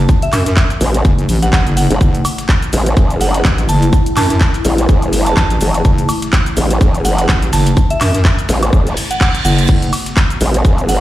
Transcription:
Already playing: analog synth pad A3 C#4 F#4
0.09 kick, closed hi-hat, cabasa
0.22 synth bell E5, closed hi-hat, cabasa
0.33 wobble bass F#2, synth bell E5, clap, closed hi-hat, open hi-hat, cabasa, high woodblock
0.46 snare, closed hi-hat, cabasa
0.57 kick, snare, clap, closed hi-hat, cabasa
0.70 closed hi-hat, cabasa
0.81 wobble bass A1, closed hi-hat, open hi-hat, cabasa
0.94 closed hi-hat, cabasa
1.05 wobble bass F#1, kick, closed hi-hat, cabasa
1.19 closed hi-hat, cabasa
1.29 wobble bass A1, closed hi-hat, open hi-hat, cabasa
1.42 synth bell F#5, snare, closed hi-hat, cabasa
1.53 synth bell F#5, kick, snare, clap, closed hi-hat, cabasa
1.66 wobble bass F#1, closed hi-hat, cabasa
1.77 synth bell F#5, closed hi-hat, open hi-hat, cabasa
1.90 wobble bass F#1, closed hi-hat, cabasa
2.01 wobble bass F#1, analog synth pad E4, kick, closed hi-hat, cabasa
2.15 closed hi-hat, cabasa
2.25 closed hi-hat, open hi-hat, cabasa, high woodblock
2.38 snare, closed hi-hat, cabasa
2.49 kick, snare, clap, closed hi-hat, cabasa
2.62 closed hi-hat, cabasa
2.73 wobble bass A1, closed hi-hat, open hi-hat, cabasa
2.86 closed hi-hat, cabasa
2.97 wobble bass F#1, kick, closed hi-hat, cabasa
3.10 closed hi-hat, cabasa
3.21 synth bell F#5, closed hi-hat, open hi-hat, cabasa
3.34 synth bell F#5, snare, closed hi-hat, cabasa
3.45 wobble bass A1, kick, snare, clap, closed hi-hat, cabasa
3.58 closed hi-hat, cabasa
3.69 wobble bass F#1, synth bell A5, closed hi-hat, open hi-hat, cabasa
3.82 closed hi-hat, cabasa
3.93 kick, closed hi-hat, cabasa
4.06 closed hi-hat, cabasa
4.17 wobble bass F#2, synth bell A5, clap, closed hi-hat, open hi-hat, cabasa, high woodblock
4.30 snare, closed hi-hat, cabasa
4.41 kick, snare, clap, closed hi-hat, cabasa
4.54 closed hi-hat, cabasa
4.65 wobble bass A1, closed hi-hat, open hi-hat, cabasa
4.78 closed hi-hat, cabasa
4.89 wobble bass F#1, kick, closed hi-hat, cabasa
5.02 closed hi-hat, cabasa
5.13 closed hi-hat, open hi-hat, cabasa
5.26 synth bell A5, snare, closed hi-hat, cabasa
5.37 wobble bass A1, synth bell A5, kick, snare, clap, closed hi-hat, cabasa
5.50 closed hi-hat, cabasa
5.61 wobble bass F#1, closed hi-hat, open hi-hat, cabasa
5.74 closed hi-hat, cabasa
5.85 wobble bass F#1, kick, closed hi-hat, cabasa
5.98 closed hi-hat, cabasa
6.09 closed hi-hat, open hi-hat, cabasa, high woodblock
6.22 snare, closed hi-hat, cabasa
6.33 kick, snare, clap, closed hi-hat, cabasa
6.46 closed hi-hat, cabasa
6.57 wobble bass A1, closed hi-hat, open hi-hat, cabasa
6.71 closed hi-hat, cabasa
6.81 wobble bass F#1, kick, closed hi-hat, cabasa
6.95 closed hi-hat, cabasa
7.05 synth bell F#5, closed hi-hat, open hi-hat, cabasa
7.18 synth bell F#5, snare, closed hi-hat, cabasa
7.29 wobble bass A1, kick, snare, clap, closed hi-hat, cabasa
7.42 closed hi-hat, cabasa
7.53 wobble bass F#1, synth bell A5, snare, closed hi-hat, open hi-hat, cabasa
7.66 closed hi-hat, cabasa
7.77 kick, closed hi-hat, cabasa
7.90 synth bell E5, closed hi-hat, cabasa
8.01 wobble bass F#2, synth bell E5, clap, closed hi-hat, open hi-hat, cabasa, high woodblock
8.14 snare, closed hi-hat, cabasa
8.25 kick, snare, clap, closed hi-hat, cabasa
8.38 closed hi-hat, cabasa
8.49 wobble bass A1, snare, closed hi-hat, open hi-hat, cabasa
8.63 closed hi-hat, cabasa, high woodblock
8.73 wobble bass F#1, kick, reverse cymbal, cabasa
8.87 closed hi-hat, cabasa
8.97 closed hi-hat, open hi-hat, cabasa
9.11 synth bell F#5, closed hi-hat, cabasa
9.21 synth bell F#5, kick, snare, clap, closed hi-hat, cabasa
9.35 closed hi-hat, cabasa
9.45 wobble bass F#1, synth bell F#5, closed hi-hat, open hi-hat, cabasa
9.59 closed hi-hat, cabasa
9.69 wobble bass F#1, analog synth pad B3 F#4, kick, closed hi-hat, crash, cabasa
9.82 closed hi-hat, cabasa
9.93 closed hi-hat, open hi-hat, cabasa, high woodblock
10.06 snare, closed hi-hat, cabasa
10.17 kick, snare, clap, closed hi-hat, cabasa
10.30 closed hi-hat, cabasa
10.41 wobble bass A1, closed hi-hat, open hi-hat, cabasa
10.54 closed hi-hat, cabasa
10.65 wobble bass F#1, kick, closed hi-hat, cabasa
10.78 closed hi-hat, cabasa
10.89 synth bell F#5, closed hi-hat, open hi-hat, cabasa

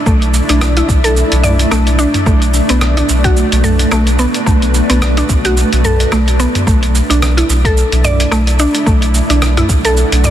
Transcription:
Already playing: ambient pad A3 D4 E4 D5 E5
0.06 sub bass B1, synth pluck A3, kick, cabasa
0.22 closed hi-hat, cabasa
0.34 cabasa
0.49 sub bass B1, synth pluck D4, closed hi-hat, cabasa
0.61 cross-stick, cabasa
0.77 synth pluck E4, closed hi-hat, cabasa
0.89 sub bass B1, kick, cabasa
1.04 synth pluck A4, closed hi-hat, cabasa
1.17 cabasa
1.32 sub bass B1, closed hi-hat, cabasa
1.43 synth pluck D5, mid tom, cabasa
1.59 closed hi-hat, cabasa
1.71 sub bass B1, synth pluck A3, cross-stick, cabasa
1.87 closed hi-hat, cabasa
1.99 synth pluck D4, cabasa
2.14 closed hi-hat, mid tom, cabasa
2.26 sub bass B1, synth pluck A3, ambient pad F#4 B4, kick, cabasa
2.42 closed hi-hat, cabasa
2.54 cabasa
2.69 sub bass B1, synth pluck B3, closed hi-hat, cabasa
2.81 cross-stick, cabasa
2.97 synth pluck D4, closed hi-hat, cabasa
3.09 sub bass B1, cabasa
3.24 synth pluck F#4, kick, closed hi-hat, cabasa
3.37 cabasa
3.52 sub bass B1, closed hi-hat, cabasa
3.64 synth pluck A4, mid tom, cabasa
3.79 closed hi-hat, cabasa
3.92 sub bass B1, synth pluck A3, cross-stick, cabasa
4.07 closed hi-hat, cabasa
4.19 synth pluck B3, cabasa
4.34 closed hi-hat, cabasa
4.46 sub bass B1, synth pluck A3, kick, cabasa
4.62 closed hi-hat, cabasa
4.74 cabasa
4.90 sub bass B1, synth pluck B3, closed hi-hat, cabasa
5.02 cross-stick, cabasa
5.17 synth pluck D4, closed hi-hat, cabasa
5.29 sub bass B1, kick, cabasa
5.45 synth pluck F#4, closed hi-hat, cabasa
5.57 cabasa
5.73 sub bass B1, closed hi-hat, cabasa
5.85 synth pluck A4, mid tom, cabasa
6.00 closed hi-hat, cabasa
6.12 sub bass B1, synth pluck A3, cross-stick, cabasa
6.28 closed hi-hat, cabasa
6.40 synth pluck B3, cabasa
6.55 closed hi-hat, mid tom, cabasa
6.66 sub bass B1, ambient pad A3 D4 E4 D5 E5, synth pluck A3, kick, cabasa
6.83 closed hi-hat, cabasa
6.95 cabasa
7.10 sub bass B1, synth pluck D4, closed hi-hat, cabasa
7.22 cross-stick, cabasa
7.37 synth pluck E4, closed hi-hat, cabasa
7.49 sub bass B1, cabasa
7.65 synth pluck A4, kick, closed hi-hat, cabasa
7.77 cabasa
7.92 sub bass B1, closed hi-hat, cabasa
8.04 synth pluck D5, mid tom, cabasa
8.20 closed hi-hat, cabasa
8.31 sub bass B1, synth pluck A3, cross-stick, cabasa
8.47 closed hi-hat, cabasa
8.59 synth pluck D4, cabasa
8.75 closed hi-hat, cabasa
8.86 sub bass B1, synth pluck A3, ambient pad F#5, kick, cabasa
9.02 closed hi-hat, cabasa
9.14 cabasa
9.29 sub bass B1, synth pluck D4, closed hi-hat, cabasa
9.42 cross-stick, cabasa
9.57 synth pluck E4, cross-stick, closed hi-hat, mid tom, cabasa
9.69 sub bass B1, kick, cabasa
9.85 synth pluck A4, closed hi-hat, cabasa
9.97 cabasa
10.12 sub bass B1, closed hi-hat, cabasa
10.24 synth pluck D5, mid tom, cabasa

